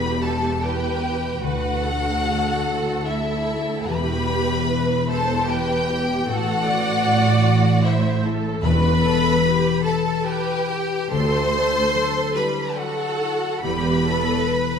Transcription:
Already playing: E1 E2 B2 G3 E4 G4 B4 B5
0.21 E4 A4 A5
0.62 G4 B4 G5
1.04 E4
1.42 D2 D3 F#4 B4 F#5
1.82 D4 A4
2.25 A3
2.66 E4
3.06 E4 D5 E5
3.48 E4
3.89 E1 E2 E3 G4 B4 B5
4.30 G3
4.68 E4 B4
5.08 A4 B4 C5 A5
5.46 G4 B4 G5
5.88 G4 B4
6.27 A1 A2 F#4 A4 F#5
6.67 E3 D5
7.07 G3
7.47 E4
7.84 E4 C5 E5
8.25 E4 A4
8.63 E1 E2 E3 B4 B5
9.04 G3 A4
9.44 E4 G4
9.84 A4 B4 A5
10.25 G4 B4 G5
10.68 G4 B4
11.10 D2 D3 A4 C5 C6
11.54 D4 A4
11.94 F#3 A4
12.34 G3 E4 B4 B5
12.76 F#4 A4 D5 F#5
13.20 E4
13.62 E1 E2 E3 G4 B4 B5
14.06 G3 A4
14.48 E4 B4

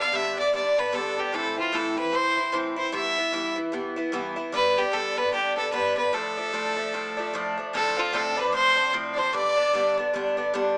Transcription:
Already playing: B3 D4
0.00 D3 F5
0.12 G2 D3 B3 D4 E5
0.37 D3 B3 D4 D5
0.53 G2 D3 B3 D4 D5
0.77 D3 B3 D4 B4
0.92 G2 D3 B3 D4 A4
1.17 D3 B3 D4 G4
1.32 A2 E3 C4 E4 A4
1.56 E3 C4 E4 F4
1.72 A2 E3 C4 E4 A4
1.97 E3 C4 E4 B4
2.12 A2 E3 C4 E4 C5
2.37 E3 C4 E4
2.52 A2 E3 C4 E4
2.76 E3 C4 E4 C5
2.92 G2 E3 B3 E4 E5
3.17 E3 B3 E4
3.32 G2 E3 B3 E4
3.56 E3 B3 E4
3.72 G2 E3 B3 E4
3.96 E3 B3 E4
4.12 G2 E3 B3 E4
4.36 E3 B3 E4
4.52 G2 D3 B3 D4 B4
4.76 D3 B3 D4 G4
4.92 G2 D3 B3 D4 A4
5.17 D3 B3 D4 B4
5.32 G2 D3 B3 D4 G4
5.56 D3 B3 D4 A4
5.72 G2 D3 B3 D4 B4
5.96 D3 B3 D4 B4
6.13 A2 F3 A3 D4 A4
6.37 F3 A3 D4
6.53 A2 F3 A3 D4
6.76 F3 A3 D4
6.93 A2 F3 A3 D4
7.17 F3 A3 D4
7.34 A2 F3 A3 D4
7.57 F3 A3 D4
7.73 A2 F3 C4 D4 A4 A5
7.97 F3 C4 D4 F4 F5
8.12 A2 F3 C4 D4 A4 A5
8.36 F3 C4 D4 B4 B5
8.49 A2 D6
8.53 F3 C4 D4 C5 C6
8.76 F3 C4 D4
8.93 A2 F3 C4 D4
9.13 D4 D5
9.18 F3 C4 C5 C6
9.33 G2 D3 B3 D4 D5 D6
9.57 D3 B3 D4
9.73 G2 D3 B3 D4
9.97 D3 B3 D4
10.13 G2 D3 B3 D4
10.37 D3 B3 D4
10.54 G2 D3 B3 D4

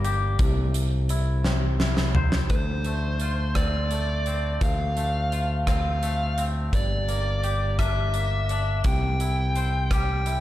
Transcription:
Already playing: G1 G3 A#3
0.05 G4, closed hi-hat
0.39 C2 C3, kick, closed hi-hat
0.74 closed hi-hat
1.09 E4, closed hi-hat
1.44 C4, snare
1.80 E4, snare
1.97 snare
2.15 C5, floor tom
2.32 snare
2.50 D2 C5, kick, closed hi-hat
2.84 A3, closed hi-hat
3.20 F4, closed hi-hat
3.55 C4 D5, kick, cross-stick, closed hi-hat
3.91 A3, closed hi-hat
4.26 C4, closed hi-hat
4.61 D2 F5, kick, closed hi-hat
4.97 A3, closed hi-hat
5.32 F4, closed hi-hat
5.67 C4 F5, kick, cross-stick, closed hi-hat
6.03 A3, closed hi-hat
6.38 C4, closed hi-hat
6.73 G1 G2 D5, kick, closed hi-hat
7.09 A#3, closed hi-hat
7.44 G4, closed hi-hat
7.79 D4 E5, kick, cross-stick, closed hi-hat
8.14 A#3, closed hi-hat
8.49 D4, closed hi-hat
8.84 C2 C3 G5, kick, closed hi-hat
9.20 E4, closed hi-hat
9.56 C5, closed hi-hat
9.91 G4 G5, kick, cross-stick, closed hi-hat
10.26 E4, closed hi-hat

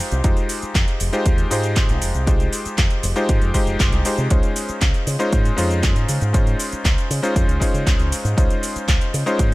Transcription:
Already playing: G#3 D#4 F4 G4 C5
0.11 C2, closed hi-hat, shaker
0.24 F2 G#3 D#4 F4 G4 C5, kick, closed hi-hat, shaker
0.37 closed hi-hat, shaker
0.49 open hi-hat, shaker
0.62 muted fingered electric bass stroke, closed hi-hat, shaker
0.75 F2, kick, clap, closed hi-hat, shaker
0.88 closed hi-hat, shaker
1.00 F1, open hi-hat, shaker
1.12 G#3 D#4 F4 G4 C5, closed hi-hat, shaker
1.26 D#2, kick, closed hi-hat, shaker
1.38 closed hi-hat, shaker
1.50 G#2 G#3 D#4 F4 G4 C5, open hi-hat, shaker
1.63 closed hi-hat, shaker
1.76 kick, clap, closed hi-hat, shaker
1.89 C2, closed hi-hat, shaker
2.02 F1, open hi-hat, shaker
2.14 C2, closed hi-hat, shaker
2.26 G#3 D#4 F4 G4 C5, kick, closed hi-hat, shaker
2.40 closed hi-hat, shaker
2.53 open hi-hat, shaker
2.65 muted fingered electric bass stroke, closed hi-hat, shaker
2.78 F2, kick, clap, closed hi-hat, shaker
2.90 closed hi-hat, shaker
3.03 F1, open hi-hat, shaker
3.16 G#3 D#4 F4 G4 C5, closed hi-hat, shaker
3.29 G#2, kick, closed hi-hat, shaker
3.42 F2, closed hi-hat, shaker
3.54 G#3 D#4 F4 G4 C5, kick, open hi-hat, shaker
3.67 F1, closed hi-hat, shaker
3.80 F1, kick, clap, closed hi-hat, shaker
3.92 C2, closed hi-hat, shaker
4.05 G#3 D#4 F4 G4 C5, muted fingered electric bass stroke, open hi-hat, shaker
4.18 C3, closed hi-hat, shaker
4.30 C#2 G#3 C#4 D#4 F4 C5, kick, closed hi-hat, shaker
4.43 closed hi-hat, shaker
4.56 open hi-hat, shaker
4.69 muted fingered electric bass stroke, closed hi-hat, shaker
4.81 C#2, kick, clap, closed hi-hat, shaker
4.94 closed hi-hat, shaker
5.07 C#3, open hi-hat, shaker
5.19 G#3 C#4 D#4 F4 C5, closed hi-hat, shaker
5.33 G#2, kick, closed hi-hat, shaker
5.45 closed hi-hat, shaker
5.56 F2 G#3 C#4 D#4 F4 C5, open hi-hat, shaker
5.71 closed hi-hat, shaker
5.83 kick, clap, closed hi-hat, shaker
5.96 G#2, closed hi-hat, shaker
6.09 C#3, open hi-hat, shaker
6.21 G#2, closed hi-hat, shaker
6.33 G#3 C#4 D#4 F4 C5, kick, closed hi-hat, shaker
6.47 closed hi-hat, shaker
6.59 open hi-hat, shaker
6.72 muted fingered electric bass stroke, closed hi-hat, shaker
6.85 C#2, kick, clap, closed hi-hat, shaker
6.98 closed hi-hat, shaker
7.10 C#3, open hi-hat, shaker
7.22 G#3 C#4 D#4 F4 C5, closed hi-hat, shaker
7.36 F2, kick, closed hi-hat, shaker
7.49 C#2, closed hi-hat, shaker
7.60 G#3 C#4 D#4 F4 C5, kick, open hi-hat, shaker
7.74 C#3, closed hi-hat, shaker
7.87 C#2, kick, clap, closed hi-hat, shaker
7.99 C#2, closed hi-hat, shaker
8.12 muted fingered electric bass stroke, open hi-hat, shaker
8.25 G#2, closed hi-hat, shaker
8.37 C#2 G#3 C#4 D#4 F4 C5, kick, closed hi-hat, shaker
8.50 closed hi-hat, shaker
8.63 open hi-hat, shaker
8.76 muted fingered electric bass stroke, closed hi-hat, shaker
8.88 C#2, kick, clap, closed hi-hat, shaker
9.01 closed hi-hat, shaker
9.14 C#3, open hi-hat, shaker
9.26 G#3 C#4 D#4 F4 C5, closed hi-hat, shaker
9.39 G#2, kick, closed hi-hat, shaker

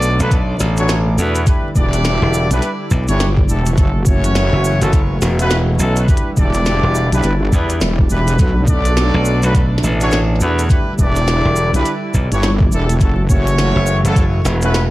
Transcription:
Already playing: B1 B2 A3 D4 F#4 A4 D5
0.02 cabasa
0.20 B1 D4 F#4 A4 B4, closed hi-hat, cabasa
0.31 kick, closed hi-hat, cabasa
0.60 A1, snare, cabasa
0.77 D4 F#4 A4 C#5, closed hi-hat, cabasa
0.89 snare, closed hi-hat, cabasa
1.18 E2 D4 F#4 A4 B4, cabasa
1.35 closed hi-hat, cabasa
1.46 D3 G3 D4 E4 G4 B4, kick, closed hi-hat, cabasa
1.75 E1 D4 E4 G4 D5, kick, cabasa
1.93 snare, closed hi-hat, cabasa
2.05 snare, closed hi-hat, cabasa
2.22 E1
2.34 cabasa
2.51 B1 D4 E4 G4 B4, closed hi-hat, cabasa
2.62 closed hi-hat, cabasa
2.91 B1, kick, cabasa
3.08 G1 D4 E4 G4 C#5, closed hi-hat, cabasa
3.20 snare, closed hi-hat, cabasa
3.37 kick
3.49 E1 D4 E4 G4 A4, cabasa
3.66 closed hi-hat, cabasa
3.78 F#1 E3 A3 C#4 E4 F#4 A4, kick, closed hi-hat, cabasa
4.06 F#1 C#4 E4 F#4 C#5, kick, cabasa
4.24 closed hi-hat, cabasa
4.35 snare, closed hi-hat, cabasa
4.53 F#1
4.65 cabasa
4.81 F#1 C#4 E4 F#4 A4, closed hi-hat, cabasa
4.93 kick, closed hi-hat, cabasa
5.22 E1, snare, cabasa
5.39 C#4 E4 F#4 B4, closed hi-hat, cabasa
5.50 snare, closed hi-hat, cabasa
5.79 B1 C#4 E4 F#4 A4, cabasa
5.96 closed hi-hat, cabasa
6.08 D3 G3 D4 E4 G4 B4, kick, cabasa
6.17 closed hi-hat
6.37 E1 D4 E4 G4 D5, kick, cabasa
6.54 snare, closed hi-hat, cabasa
6.66 snare, closed hi-hat, cabasa
6.83 E1
6.95 cabasa
7.12 B1 D4 E4 G4 B4, closed hi-hat, cabasa
7.23 G1, closed hi-hat, cabasa
7.52 E2 D4 E4 G4 B4, kick, cabasa
7.69 closed hi-hat, cabasa
7.81 E1, snare, closed hi-hat, cabasa
7.99 kick
8.10 E1 D4 E4 G4 B4, cabasa
8.27 closed hi-hat, cabasa
8.38 B1 B2 A3 D4 F#4 A4 B4, kick, closed hi-hat, cabasa
8.68 B1 D4 F#4 A4 D5, kick, cabasa
8.85 closed hi-hat, cabasa
8.97 snare, closed hi-hat, cabasa
9.14 B1
9.25 cabasa
9.42 B1 D4 F#4 A4 B4, closed hi-hat, cabasa
9.54 kick, closed hi-hat, cabasa
9.78 snare
9.83 A1, cabasa
10.01 D4 F#4 A4 C#5, closed hi-hat, cabasa
10.11 snare, closed hi-hat, cabasa
10.40 E2 D4 F#4 A4 B4, cabasa
10.59 closed hi-hat, cabasa
10.69 D3 G3 D4 E4 G4 B4, kick, closed hi-hat, cabasa
10.98 E1 D4 E4 G4 D5, kick, cabasa
11.16 snare, closed hi-hat, cabasa
11.27 snare, closed hi-hat, cabasa
11.45 E1
11.56 cabasa
11.73 B1 D4 E4 G4 B4, closed hi-hat, cabasa
11.85 closed hi-hat, cabasa
12.14 B1, kick, cabasa
12.31 G1 D4 E4 G4 C#5, closed hi-hat, cabasa
12.43 snare, closed hi-hat, cabasa
12.60 kick
12.71 E1 D4 E4 G4 A4, cabasa
12.89 closed hi-hat, cabasa
13.00 F#1 E3 A3 C#4 E4 F#4 A4, kick, closed hi-hat, cabasa
13.29 F#1 C#4 E4 F#4 C#5, kick, cabasa
13.47 closed hi-hat, cabasa
13.58 snare, closed hi-hat, cabasa
13.76 F#1
13.87 cabasa
14.04 F#1 C#4 E4 F#4 A4, closed hi-hat, cabasa
14.16 kick, closed hi-hat, cabasa
14.45 E1, snare, cabasa
14.62 C#4 E4 F#4 B4, closed hi-hat, cabasa
14.74 snare, closed hi-hat, cabasa

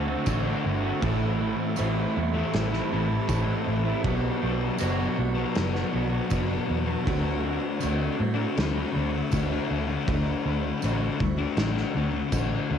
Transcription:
Already playing: D2 D3 F#4 C5 E5 B5
0.06 A3 C4 D4 F#4
0.26 A1 D3 A3 C4 D4 F#4, kick, tambourine, crash
0.43 C4 D4 F#4
0.48 A3
0.64 G1 D3 A3 D4
0.81 C4 D4 F#4
0.85 A3
1.01 A1 A2 E3 A3 C4 E4 G4 E5 A5, kick, crash
1.39 A2 E3 A3 C4 E4
1.58 A3 C4 E4
1.76 A2 E3 A3 C4 E4, tambourine, crash
1.80 A1
2.14 E2 E3 A3 C4 E4, muted distorted electric guitar stroke
2.34 E3 A3 C4 E4
2.53 A1, snare, crash
2.72 E3 A3 C4 E4, snare
2.90 A1 A2 E3 A3 C4 E4
3.07 E3 A3 C4 E4
3.27 A1 A2 E3 A3 C4 E4, kick, tambourine, crash
3.45 E3 A3 C4 E4
3.49 A3
3.65 A1 A2 E3 A3
3.85 E3 A3 C4 E4
4.01 B1 B2 F#3 B3 F#4 B4 D5, kick, crash
4.06 D4 F#4
4.40 B1 B2 F#3 B3 D4 F#4
4.61 B3 D4 F#4
4.78 F#1 B2 F#3 B3 D4 F#4, tambourine, crash
5.16 B1 F#3 B3 D4 F#4, muted distorted electric guitar stroke
5.36 F#3 B3 D4 F#4
5.55 F#1, snare, crash
5.74 F#3 B3 D4 F#4, snare
5.92 B1 B2 F#3 B3 D4 F#4
6.08 F#3 B3 F#4
6.13 B3 D4
6.30 F#1 B2 F#3 B3 D4 F#4, kick, tambourine, crash
6.49 F#3 B3 D4 F#4
6.65 B2 F#3 B3
6.70 E2
6.84 F#3 B3 D4 F#4
6.89 B3
7.06 D2 D3 A3 C4 D4 F#4 C5 E5 B5, kick, crash
7.43 D3 A3 C4 D4 F#4
7.62 A3 C4 F#4
7.80 D2 D3 A3 C4 D4 F#4, tambourine, crash
8.17 A2 D3 A3 C4 F#4, muted distorted electric guitar stroke
8.34 D4 F#4
8.39 A3 C4
8.58 D2, snare, crash
8.71 D4
8.75 A3 C4 F#4
8.94 D2 D3 A3 C4 D4 F#4
9.11 A3 C4 D4 F#4
9.31 D2 D3 A3 C4 D4 F#4, kick, tambourine, crash
9.49 A3 C4 D4 F#4
9.68 D2 D3 A3 D4
9.87 A3 C4 D4 F#4
10.06 D2 D3 A3 C4 D4 F#4 F#5, kick, crash
10.45 D2 D3 A3 C4 D4 F#4
10.65 A3 C4 F#4
10.82 A1 D3 A3 C4 D4 F#4, tambourine, crash
11.19 D2 D3 A3 C4 F#4, muted distorted electric guitar stroke, kick
11.38 A3 C4 D4 F#4
11.57 A1, snare, crash
11.74 D4, snare
11.78 A3 C4 F#4
11.96 D2 D3 A3 C4 D4 F#4
12.12 C4 D4 F#4
12.17 A3
12.32 A1 D3 A3 C4 D4 F#4, kick, tambourine, crash
12.50 A3 C4 D4 F#4
12.70 D2 D3 A3 D4

